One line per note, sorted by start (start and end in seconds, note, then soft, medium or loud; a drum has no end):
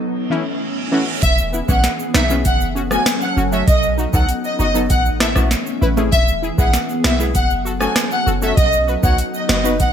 0.00 1.22 E3 medium
0.00 1.22 A3 medium
0.00 1.22 C#4 medium
0.00 reverse cymbal medium
0.30 0.43 E3 medium
0.30 0.43 A3 medium
0.30 0.43 C#4 medium
0.30 0.44 E4 loud
0.92 1.04 E3 medium
0.92 1.04 A3 medium
0.92 1.05 C#4 medium
0.92 1.05 F#4 medium
1.23 1.62 E1 loud
1.23 2.44 E3 medium
1.23 2.44 B3 medium
1.23 2.44 G#4 medium
1.23 1.32 E5 loud
1.23 kick loud
1.23 closed hi-hat medium
1.23 shaker medium
1.38 shaker medium
1.53 1.59 B3 medium
1.53 1.60 E4 medium
1.53 shaker soft
1.68 1.82 G#1 medium
1.68 1.81 E3 medium
1.68 1.81 G#3 medium
1.68 1.81 B3 medium
1.68 1.81 C#4 medium
1.68 1.78 F#5 medium
1.68 kick loud
1.68 shaker medium
1.84 snare medium
1.84 closed hi-hat medium
1.84 shaker medium
1.99 shaker soft
2.14 2.47 B1 medium
2.14 2.20 B3 medium
2.14 2.21 D#4 medium
2.14 2.24 E5 medium
2.14 cross-stick medium
2.14 snare loud
2.14 shaker medium
2.29 2.42 E3 medium
2.29 2.42 G#3 medium
2.29 2.42 B3 medium
2.29 2.43 C#4 medium
2.29 shaker medium
2.45 2.98 F#1 loud
2.45 4.88 F#3 medium
2.45 3.67 C#4 medium
2.45 3.66 A4 medium
2.45 2.55 F#5 medium
2.45 kick loud
2.45 closed hi-hat medium
2.45 shaker medium
2.61 shaker medium
2.75 2.82 C#4 medium
2.75 2.82 F#4 medium
2.75 shaker medium
2.91 3.03 F#3 medium
2.91 3.03 A3 medium
2.91 3.04 C#4 medium
2.91 3.04 F#4 medium
2.91 3.01 G#5 medium
2.91 cross-stick loud
2.91 shaker medium
3.06 cross-stick medium
3.06 snare loud
3.06 closed hi-hat medium
3.06 shaker medium
3.21 3.31 F#5 medium
3.21 shaker medium
3.36 3.63 F#1 medium
3.36 3.43 C#4 medium
3.36 3.44 F#4 medium
3.36 shaker medium
3.52 3.64 F#3 medium
3.52 3.65 A3 medium
3.52 3.65 C#4 medium
3.52 3.65 F#4 medium
3.52 3.62 E5 medium
3.52 shaker medium
3.68 4.07 B1 loud
3.68 4.89 B3 medium
3.68 4.89 D#4 medium
3.68 3.77 D#5 loud
3.68 kick loud
3.68 closed hi-hat medium
3.68 shaker medium
3.83 shaker medium
3.98 4.04 D#4 medium
3.98 4.05 F#4 medium
3.98 shaker soft
4.13 4.27 C#2 medium
4.13 4.25 F#3 medium
4.13 4.26 B3 medium
4.13 4.26 D#4 medium
4.13 4.26 A4 medium
4.13 4.23 F#5 medium
4.13 kick medium
4.13 shaker medium
4.29 closed hi-hat medium
4.29 shaker medium
4.44 4.54 D#5 medium
4.44 shaker soft
4.59 4.92 F#1 medium
4.59 4.65 D#4 medium
4.59 4.66 F#4 medium
4.59 4.69 D#5 medium
4.59 shaker medium
4.74 4.87 F#3 medium
4.74 4.87 B3 medium
4.74 4.87 D#4 medium
4.74 4.88 A4 medium
4.74 shaker medium
4.90 5.43 A1 loud
4.90 7.33 E3 medium
4.90 6.11 A3 medium
4.90 6.11 C#4 medium
4.90 5.00 F#5 medium
4.90 kick loud
4.90 closed hi-hat medium
4.90 shaker medium
5.06 shaker medium
5.20 5.27 E4 medium
5.20 5.27 A4 medium
5.20 5.30 E5 medium
5.20 cross-stick medium
5.20 snare loud
5.20 shaker medium
5.35 5.48 A3 medium
5.35 5.48 C#4 medium
5.35 5.48 E4 medium
5.35 5.49 F#4 medium
5.35 kick loud
5.35 cross-stick loud
5.35 shaker medium
5.51 snare medium
5.51 closed hi-hat medium
5.51 shaker medium
5.67 shaker medium
5.81 6.14 A1 loud
5.81 5.88 E4 medium
5.81 5.89 B4 loud
5.81 shaker medium
5.97 6.09 A3 medium
5.97 6.09 C#4 medium
5.97 6.10 E4 medium
5.97 6.10 G#4 medium
5.97 high timbale medium
5.97 shaker medium
6.12 6.52 E1 loud
6.12 7.34 B3 medium
6.12 7.34 G#4 medium
6.12 6.22 E5 loud
6.12 kick loud
6.12 closed hi-hat medium
6.12 shaker medium
6.28 shaker medium
6.42 6.49 E4 medium
6.42 6.50 G#4 medium
6.42 shaker soft
6.58 6.72 G#1 medium
6.58 6.70 G#3 medium
6.58 6.71 B3 medium
6.58 6.71 E4 medium
6.58 6.71 G#4 medium
6.58 6.68 F#5 medium
6.58 kick loud
6.58 shaker medium
6.73 snare medium
6.73 closed hi-hat medium
6.73 shaker medium
6.89 shaker soft
7.04 7.37 B1 medium
7.04 7.10 E4 medium
7.04 7.11 F#4 medium
7.04 7.14 E5 medium
7.04 cross-stick medium
7.04 snare loud
7.04 shaker medium
7.19 7.32 G#3 medium
7.19 7.32 B3 medium
7.19 7.32 E4 medium
7.19 7.32 G#4 medium
7.19 shaker medium
7.35 7.88 F#1 loud
7.35 9.77 F#3 medium
7.35 8.56 C#4 medium
7.35 8.56 A4 medium
7.35 7.45 F#5 medium
7.35 kick medium
7.35 closed hi-hat medium
7.35 shaker medium
7.50 shaker medium
7.65 7.71 F#4 medium
7.65 7.72 A4 medium
7.65 shaker medium
7.80 7.93 A3 medium
7.80 7.93 C#4 medium
7.80 7.93 F#4 medium
7.80 7.94 A4 medium
7.80 7.91 G#5 medium
7.80 cross-stick loud
7.80 shaker medium
7.96 cross-stick medium
7.96 snare loud
7.96 closed hi-hat medium
7.96 shaker medium
8.11 8.21 F#5 medium
8.11 shaker soft
8.26 8.53 F#1 medium
8.26 8.33 F#4 medium
8.26 8.33 A4 medium
8.26 shaker medium
8.42 8.54 A3 medium
8.42 8.54 C#4 medium
8.42 8.55 F#4 medium
8.42 8.55 A4 medium
8.42 8.52 E5 medium
8.42 shaker medium
8.57 8.97 B1 loud
8.57 9.79 B3 medium
8.57 9.79 D#4 medium
8.57 8.67 D#5 loud
8.57 kick loud
8.57 closed hi-hat medium
8.57 shaker medium
8.73 shaker medium
8.87 8.94 F#4 medium
8.87 8.95 B4 medium
8.87 shaker soft
9.03 9.17 C#2 medium
9.03 9.15 B3 medium
9.03 9.16 D#4 medium
9.03 9.16 F#4 medium
9.03 9.16 C#5 medium
9.03 9.13 F#5 medium
9.03 kick loud
9.03 shaker medium
9.18 closed hi-hat medium
9.18 shaker medium
9.34 9.44 D#5 medium
9.34 shaker soft
9.49 9.82 F#1 medium
9.49 9.55 F#4 medium
9.49 9.56 B4 medium
9.49 9.59 D#5 medium
9.49 cross-stick medium
9.49 snare loud
9.49 shaker medium
9.64 9.77 B3 medium
9.64 9.77 D#4 medium
9.64 9.77 F#4 medium
9.64 9.77 B4 medium
9.64 shaker medium
9.80 9.93 A1 loud
9.80 9.93 E3 medium
9.80 9.93 A3 medium
9.80 9.93 C#4 medium
9.80 9.90 F#5 medium
9.80 kick loud
9.80 closed hi-hat medium
9.80 shaker medium